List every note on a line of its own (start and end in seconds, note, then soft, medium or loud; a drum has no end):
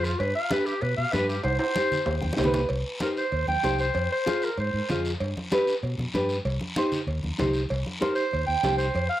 0.00 0.14 F2 medium
0.00 0.11 F4 medium
0.00 0.11 G#4 medium
0.00 0.11 C5 medium
0.04 0.21 F4 medium
0.04 short guiro medium
0.19 0.32 G2 loud
0.19 0.35 B4 loud
0.19 cowbell loud
0.19 high conga soft
0.19 long guiro medium
0.35 0.53 F5 loud
0.51 0.73 D4 medium
0.51 0.73 G4 medium
0.51 0.73 B4 medium
0.51 0.68 B4 medium
0.51 cowbell medium
0.51 high conga medium
0.51 short guiro medium
0.66 0.84 G4 loud
0.66 short guiro medium
0.81 0.95 B2 medium
0.81 0.97 B4 medium
0.81 cowbell medium
0.81 high conga soft
0.81 long guiro medium
0.97 1.04 B2 medium
0.97 1.14 F5 loud
1.12 1.39 G2 medium
1.12 1.35 D4 medium
1.12 1.36 G4 medium
1.12 1.28 B4 loud
1.12 1.36 B4 medium
1.12 cowbell medium
1.12 high conga medium
1.12 short guiro medium
1.29 1.43 G4 medium
1.29 short guiro medium
1.44 1.57 C2 loud
1.44 1.59 C5 medium
1.44 cowbell loud
1.44 high conga soft
1.44 high timbale medium
1.44 long guiro medium
1.59 2.21 C5 loud
1.59 high timbale loud
1.76 1.98 D#4 medium
1.76 1.98 G4 medium
1.76 1.98 C5 medium
1.76 cowbell medium
1.76 high conga medium
1.76 short guiro medium
1.92 low conga medium
1.92 short guiro medium
2.06 2.19 D#2 medium
2.06 cowbell medium
2.06 high conga soft
2.06 low timbale medium
2.06 long guiro medium
2.21 2.29 D#2 medium
2.21 2.37 G5 medium
2.21 high conga medium
2.33 2.60 D#4 medium
2.33 high conga medium
2.37 2.63 C2 medium
2.37 2.60 G4 medium
2.37 2.60 C5 medium
2.37 2.45 D#5 medium
2.37 cowbell medium
2.37 low timbale medium
2.37 short guiro medium
2.44 2.68 B4 medium
2.44 low conga loud
2.54 low conga medium
2.54 low timbale loud
2.54 short guiro medium
2.69 2.82 C2 medium
2.69 cowbell medium
2.69 high conga soft
2.69 long guiro medium
3.00 3.23 D#4 medium
3.00 3.23 G4 medium
3.00 3.09 A#4 medium
3.00 3.23 C5 medium
3.00 cowbell medium
3.00 high conga medium
3.00 short guiro medium
3.17 3.46 C5 loud
3.17 short guiro medium
3.32 3.45 D#2 medium
3.32 cowbell medium
3.32 high conga soft
3.32 long guiro medium
3.48 3.54 D#2 medium
3.48 3.77 G5 loud
3.48 high conga medium
3.63 3.89 C2 medium
3.63 3.85 D#4 medium
3.63 3.86 G4 medium
3.63 3.86 C5 medium
3.63 cowbell medium
3.63 high conga medium
3.63 low timbale medium
3.63 short guiro medium
3.79 4.09 C5 medium
3.79 short guiro medium
3.94 4.07 F2 loud
3.94 cowbell loud
3.94 high conga soft
3.94 long guiro medium
4.12 4.46 C5 loud
4.26 4.48 F4 medium
4.26 4.48 G#4 medium
4.26 4.48 C5 medium
4.26 cowbell medium
4.26 high conga medium
4.26 short guiro medium
4.42 4.59 A#4 medium
4.42 short guiro medium
4.57 4.70 G#2 medium
4.57 5.02 C5 medium
4.57 cowbell medium
4.57 high conga soft
4.57 long guiro medium
4.74 4.80 G#2 medium
4.89 5.14 F2 medium
4.89 5.11 F4 medium
4.89 5.11 G#4 medium
4.89 5.12 D#5 medium
4.89 cowbell medium
4.89 high conga medium
4.89 low conga medium
4.89 short guiro medium
5.05 short guiro medium
5.20 5.33 G2 loud
5.20 cowbell loud
5.20 high conga soft
5.20 long guiro medium
5.37 high conga medium
5.51 5.73 D4 medium
5.51 5.73 G4 medium
5.51 5.74 B4 loud
5.51 cowbell medium
5.51 high conga medium
5.51 short guiro medium
5.67 short guiro medium
5.83 5.95 B2 medium
5.83 cowbell medium
5.83 high conga soft
5.83 long guiro medium
5.98 6.04 B2 medium
5.98 high conga medium
6.13 6.39 G2 medium
6.13 6.36 D4 medium
6.13 6.36 G4 medium
6.13 6.36 B4 medium
6.13 cowbell medium
6.13 high conga medium
6.13 short guiro medium
6.29 short guiro medium
6.45 6.58 C2 loud
6.45 cowbell medium
6.45 high conga soft
6.45 long guiro medium
6.61 high conga medium
6.76 6.98 D#4 medium
6.76 6.99 G4 medium
6.76 6.99 C5 medium
6.76 cowbell medium
6.76 high conga medium
6.76 short guiro medium
6.92 low conga medium
6.92 short guiro medium
7.07 7.20 D#2 medium
7.07 cowbell medium
7.07 high conga soft
7.07 long guiro medium
7.23 7.30 D#2 medium
7.23 high conga medium
7.38 7.64 C2 medium
7.38 7.61 D#4 medium
7.38 7.61 G4 medium
7.38 7.61 C5 medium
7.38 cowbell medium
7.38 high conga medium
7.38 low conga medium
7.38 low timbale medium
7.38 short guiro medium
7.53 short guiro medium
7.69 7.83 C2 medium
7.69 cowbell loud
7.69 high conga soft
7.69 long guiro medium
7.86 high conga medium
8.00 8.23 D#4 medium
8.00 8.23 G4 medium
8.00 8.15 A#4 medium
8.00 8.23 C5 medium
8.00 cowbell medium
8.00 high conga medium
8.00 short guiro medium
8.15 8.45 C5 loud
8.15 short guiro medium
8.31 8.46 D#2 medium
8.31 cowbell medium
8.31 high conga soft
8.31 long guiro medium
8.47 8.54 D#2 medium
8.47 8.77 G5 loud
8.63 8.89 C2 medium
8.63 8.85 D#4 medium
8.63 8.86 G4 medium
8.63 8.86 C5 medium
8.63 cowbell medium
8.63 high conga medium
8.63 low timbale medium
8.63 short guiro medium
8.78 9.08 C5 medium
8.78 short guiro medium
8.94 9.07 F2 loud
8.94 cowbell loud
8.94 high conga soft
8.94 long guiro medium
9.10 9.20 F5 loud